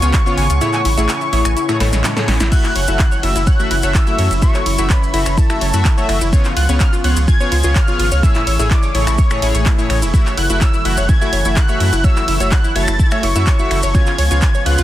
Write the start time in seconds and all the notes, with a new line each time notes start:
Already playing: C#3 F3 B3 G#4 F#5 C#6
0.02 C#2 C#3 B3 F4 C#5 G#5, closed hi-hat, maracas
0.13 F4, finger snap, kick, clap, closed hi-hat, maracas
0.26 C#3 B3 F4 C#5, maracas
0.37 G#1 G#5 C#6, open hi-hat
0.50 C#2 F4, closed hi-hat, maracas
0.61 A2 E3 A3 C#4 E4 G#4 C#5, closed hi-hat, maracas
0.73 G#5, clap, maracas
0.85 A1 E4, open hi-hat
0.98 A1 A2 A3 E4 G#4 C#5, closed hi-hat, maracas
1.09 G#5, clap, closed hi-hat, maracas
1.21 E4, maracas
1.33 A1 A2 A3 E4 G#4 C#5, open hi-hat
1.45 A1 G#5, finger snap, closed hi-hat, maracas
1.57 E4, closed hi-hat, maracas
1.69 A2 A3 E4 G#4 C#5, finger snap, maracas
1.80 A1 A2 G#3 A3 A4 C#5 B5, snare, open hi-hat
1.93 A1 C#5, snare, closed hi-hat, maracas
2.04 snare, clap, closed hi-hat, maracas
2.17 A2 A3 G#4 A4 C#5, snare, maracas
2.28 A1 C#5, snare, open hi-hat
2.40 A1 E4, snare, closed hi-hat, maracas
2.52 F#3 A3 E4 F#4 E5 C#6 F#6, kick, closed hi-hat, crash, maracas
2.64 E4, clap, maracas
2.76 F#1 C#5, open hi-hat, ride
2.88 F#1 A3 E4 F#4 E5, closed hi-hat, maracas
2.99 E4, kick, clap, closed hi-hat, maracas
3.12 C#5, maracas
3.23 F#1 A3 E4 F#4 E5 E6, open hi-hat, ride
3.36 F#1 E4, closed hi-hat, maracas
3.47 C#5 F#6, kick, closed hi-hat, maracas
3.59 A3 E4 F#4 E5, maracas
3.71 F#1 E4, open hi-hat, ride
3.83 F#1 A3 F#4 C#5 E5, closed hi-hat, maracas
3.94 E4 E6, finger snap, kick, clap, closed hi-hat, maracas
4.07 A3 E4 F#4 E5, maracas
4.18 F#2 C#5, open hi-hat, ride
4.31 F#1 E4, closed hi-hat, maracas
4.42 A3 E4 F#4 E5 C#6, kick, closed hi-hat, maracas
4.54 C#5, clap, maracas
4.66 F#1 E4, open hi-hat, ride
4.78 F#1 A3 E4 F#4 E5, closed hi-hat, maracas
4.90 C#5 B5, kick, clap, closed hi-hat, maracas
5.02 E4, maracas
5.14 F#1 A3 E4 F#4 E5, open hi-hat, ride
5.26 F#1 C#5, finger snap, closed hi-hat, maracas
5.38 E4 A5, kick, closed hi-hat, maracas
5.50 A3 E4 F#4 E5, finger snap, maracas
5.61 F#1 C#5, open hi-hat, ride
5.73 F#2 A3 E4 F#4 E5, closed hi-hat, maracas
5.85 E4, kick, clap, closed hi-hat, maracas
5.98 A3 F#4 C#5 E5, maracas
6.09 F#1 E4, finger snap, open hi-hat, ride
6.21 F#1 E4, closed hi-hat, maracas
6.33 C#3 F3 B3 F4 G#4 C#5, kick, closed hi-hat, maracas
6.44 F4, clap, maracas
6.57 C#2 F4 F#6, open hi-hat, ride
6.69 C#2 C#3 B3 F4 C#5, closed hi-hat, maracas
6.80 F4 F6, kick, clap, closed hi-hat, maracas
6.93 F4, maracas
7.04 C#2 C#3 B3 F4 C#5 F#6, open hi-hat, ride
7.17 C#2 F4, closed hi-hat, maracas
7.28 F4 G#6, kick, closed hi-hat, maracas
7.40 C#3 B3 F4 C#5, maracas
7.52 C#2 F4, open hi-hat, ride
7.63 C#2 C#3 B3 F4 C#5, closed hi-hat, maracas
7.75 C#5 F6, finger snap, kick, clap, closed hi-hat, maracas
7.88 C#3 B3 F4 C#5, maracas
7.99 G#1 F4, open hi-hat, ride
8.12 C#2 C#5, closed hi-hat, maracas
8.23 A2 E3 A3 E4 G#4 C#5 E6, kick, closed hi-hat, maracas
8.35 E4, clap, maracas
8.47 A1 C#5, open hi-hat, ride
8.59 A1 A2 A3 E4 G#4 C#5, closed hi-hat, maracas
8.71 E4 D6, kick, clap, closed hi-hat, maracas
8.83 C#5, maracas
8.95 A1 A2 A3 E4 G#4 C#5 C#6, open hi-hat, ride
9.07 A1 E4, finger snap, closed hi-hat, maracas
9.18 C#5, kick, closed hi-hat, maracas
9.30 A2 A3 E4 G#4 C#5, finger snap, maracas
9.42 A1 A2 A3 E4 G#4 C#5, open hi-hat, ride
9.55 A1 C#5, closed hi-hat, maracas
9.66 E4, kick, clap, closed hi-hat, maracas
9.78 A2 A3 E4 G#4 C#5, maracas
9.90 A1 C#5, finger snap, open hi-hat, ride
10.02 E1 E4, closed hi-hat, maracas
10.14 F#3 A3 E4 F#4 E5, kick, closed hi-hat, maracas
10.26 C#5, clap, maracas
10.37 F#1 E4 F#6, open hi-hat, ride
10.50 F#1 A3 E4 F#4 E5, closed hi-hat, maracas
10.61 C#5 E6, kick, clap, closed hi-hat, maracas
10.74 E4, maracas
10.85 F#1 A3 E4 F#4 E5 F#6, open hi-hat, ride
10.97 F#1 C#5, closed hi-hat, maracas
11.09 E4 G#6, kick, closed hi-hat, maracas
11.21 A3 E4 F#4 E5, maracas
11.33 F#1 C#5, open hi-hat, ride
11.45 F#1 A3 E4 F#4 E5, closed hi-hat, maracas
11.56 E4 F#6, finger snap, kick, clap, closed hi-hat, maracas
11.69 A3 F#4 C#5 E5, maracas
11.80 F#2 E4 F#6, open hi-hat, ride
11.93 F#1 E4, closed hi-hat, maracas
12.04 A3 F#4 C#5 E5 E6, kick, closed hi-hat, maracas
12.16 E4, clap, maracas
12.28 F#1 E4, open hi-hat, ride
12.40 F#1 A3 F#4 C#5 E5, closed hi-hat, maracas
12.51 E4 F#6, kick, clap, closed hi-hat, maracas
12.64 E4, maracas
12.76 F#1 A3 F#4 C#5 E5 A6, open hi-hat, ride
12.88 F#1 E4, finger snap, closed hi-hat, maracas
12.99 E4, kick, closed hi-hat, maracas
13.09 A3 F#4 C#5 E5 G#6, finger snap, maracas
13.23 F#1 E4 C#6, open hi-hat, ride
13.36 F#2 A3 E4 F#4 E5, closed hi-hat, maracas
13.47 C#5, kick, clap, closed hi-hat, maracas
13.59 A3 E4 F#4 E5, maracas
13.71 F#1 E4, finger snap, open hi-hat, ride
13.83 F#1 C#5, closed hi-hat, maracas
13.94 C#3 F3 B3 F4 G#4 C#5 G#6, kick, closed hi-hat, maracas
14.06 F4, clap, maracas
14.18 C#2 C#5, open hi-hat, ride
14.31 C#2 C#3 B3 F4 C#5, closed hi-hat, maracas
14.42 F4, kick, clap, closed hi-hat, maracas
14.55 C#5, maracas
14.66 C#2 C#3 B3 F4 C#5 F#6, open hi-hat, ride
14.78 C#2 F4, closed hi-hat, maracas